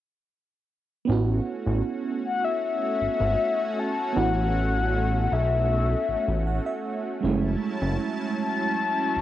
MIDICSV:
0, 0, Header, 1, 5, 480
1, 0, Start_track
1, 0, Tempo, 769231
1, 676, Time_signature, 4, 2, 24, 8
1, 5750, End_track
2, 0, Start_track
2, 0, Title_t, "Soft synth lead"
2, 0, Program_c, 0, 80
2, 1405, Note_on_c, 0, 78, 104
2, 1524, Note_on_c, 0, 76, 90
2, 1534, Note_off_c, 0, 78, 0
2, 1640, Note_off_c, 0, 76, 0
2, 1645, Note_on_c, 0, 76, 99
2, 2366, Note_on_c, 0, 81, 103
2, 2376, Note_off_c, 0, 76, 0
2, 2601, Note_off_c, 0, 81, 0
2, 2606, Note_on_c, 0, 78, 108
2, 3326, Note_on_c, 0, 76, 100
2, 3336, Note_off_c, 0, 78, 0
2, 4281, Note_off_c, 0, 76, 0
2, 5244, Note_on_c, 0, 81, 127
2, 5750, Note_off_c, 0, 81, 0
2, 5750, End_track
3, 0, Start_track
3, 0, Title_t, "Analog synth pad"
3, 0, Program_c, 1, 89
3, 676, Note_on_c, 1, 61, 80
3, 676, Note_on_c, 1, 66, 95
3, 677, Note_on_c, 1, 57, 88
3, 4491, Note_off_c, 1, 61, 0
3, 4491, Note_off_c, 1, 66, 0
3, 4492, Note_off_c, 1, 57, 0
3, 4515, Note_on_c, 1, 61, 76
3, 4516, Note_on_c, 1, 54, 90
3, 4516, Note_on_c, 1, 64, 80
3, 4516, Note_on_c, 1, 81, 94
3, 5750, Note_off_c, 1, 54, 0
3, 5750, Note_off_c, 1, 61, 0
3, 5750, Note_off_c, 1, 64, 0
3, 5750, Note_off_c, 1, 81, 0
3, 5750, End_track
4, 0, Start_track
4, 0, Title_t, "FM electric piano"
4, 0, Program_c, 2, 5
4, 655, Note_on_c, 2, 59, 76
4, 669, Note_on_c, 2, 61, 77
4, 683, Note_on_c, 2, 64, 69
4, 697, Note_on_c, 2, 66, 89
4, 811, Control_c, 2, 64, 127
4, 2561, Note_off_c, 2, 59, 0
4, 2568, Note_off_c, 2, 61, 0
4, 2575, Note_off_c, 2, 64, 0
4, 2575, Note_on_c, 2, 59, 66
4, 2582, Note_off_c, 2, 66, 0
4, 2589, Note_on_c, 2, 61, 59
4, 2604, Note_on_c, 2, 64, 62
4, 2618, Note_on_c, 2, 66, 77
4, 4037, Note_on_c, 2, 78, 74
4, 4149, Note_off_c, 2, 78, 0
4, 4157, Note_on_c, 2, 76, 75
4, 4481, Note_off_c, 2, 59, 0
4, 4488, Note_off_c, 2, 61, 0
4, 4492, Note_off_c, 2, 76, 0
4, 4495, Note_off_c, 2, 64, 0
4, 4496, Note_on_c, 2, 56, 66
4, 4502, Note_off_c, 2, 66, 0
4, 4511, Note_on_c, 2, 61, 75
4, 4524, Control_c, 2, 64, 0
4, 4524, Note_on_c, 2, 64, 79
4, 4531, Note_off_c, 2, 56, 0
4, 4537, Note_on_c, 2, 57, 84
4, 4538, Note_on_c, 2, 56, 87
4, 4624, Control_c, 2, 64, 127
4, 5750, Note_off_c, 2, 56, 0
4, 5750, Note_off_c, 2, 57, 0
4, 5750, Note_off_c, 2, 61, 0
4, 5750, Note_off_c, 2, 64, 0
4, 5750, End_track
5, 0, Start_track
5, 0, Title_t, "Analog synth bass"
5, 0, Program_c, 3, 38
5, 679, Note_on_c, 3, 33, 98
5, 876, Note_off_c, 3, 33, 0
5, 1039, Note_on_c, 3, 33, 91
5, 1137, Note_off_c, 3, 33, 0
5, 1879, Note_on_c, 3, 32, 50
5, 1926, Note_off_c, 3, 32, 0
5, 1999, Note_on_c, 3, 32, 86
5, 2097, Note_off_c, 3, 32, 0
5, 2598, Note_on_c, 3, 33, 107
5, 3292, Note_off_c, 3, 33, 0
5, 3319, Note_on_c, 3, 35, 88
5, 3714, Note_off_c, 3, 35, 0
5, 3799, Note_on_c, 3, 33, 48
5, 3846, Note_off_c, 3, 33, 0
5, 3919, Note_on_c, 3, 33, 93
5, 4116, Note_off_c, 3, 33, 0
5, 4518, Note_on_c, 3, 30, 110
5, 4716, Note_off_c, 3, 30, 0
5, 4879, Note_on_c, 3, 30, 102
5, 4977, Note_off_c, 3, 30, 0
5, 5719, Note_on_c, 3, 28, 46
5, 5750, Note_off_c, 3, 28, 0
5, 5750, End_track
0, 0, End_of_file